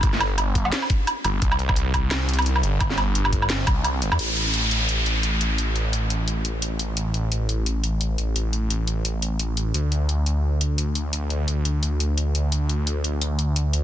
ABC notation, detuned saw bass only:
X:1
M:4/4
L:1/16
Q:"Swing 16ths" 1/4=173
K:C
V:1 name="Detuned saw bass" clef=bass
G,,,8 z6 G,,,2 | C,,12- C,,2 G,,,2- | G,,,8 G,,,2 C,,4 G,,, E,, | A,,,16- |
A,,,16- | A,,,16- | A,,,16 | D,,16- |
D,,16- | D,,16 |]